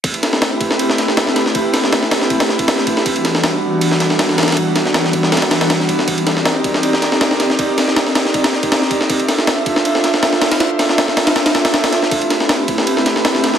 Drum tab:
RD |x-x-x---x---x---x---x---x---x---|x---x---x---x---x-x---x-x---x---|x-x-x---x-------x---x---x---xxxx|x---x---x---x---xxx-x-x-x---x---|
SD |----o-o-o-----o---o-o-o-o-o-o-o-|----o-o-o-o-o-o---o-o---o-o---o-|----o-o-o---------o-o-o-o-o-oooo|----o-o-o-o---o-ooo-o-o-o-o---o-|
BD |o-----------o-------------------|o---------------o-----o-----o---|o-------------------------------|o-----------o---------------o---|

RD |x-x-x---x---x---x---x---x---x---|x---x---x---x---x-x---x-x---x---|x-x-x---x---x---x---x---x---x-x-|x---x---x---x-x-x-x-x-x-x-x-x---|
SD |----o-o-o-----o---o-o-o-o-o-o-o-|----o-o-o-o-o-o---o-o---o-o---o-|----o-o-o-----o---o-o-o-o-o-o-o-|o---o-o-o-o-o-o-o-o-o-o-o-o-o-o-|
BD |o-----------o-------------------|o---------------o-----o-----o---|o-----------o-------------------|--------------------------------|

RD |x-x-x---x---x---x---x---x---x---|
SD |----o-o-o-----o---o-o-o-o-o-o-o-|
BD |o-----------o-------------------|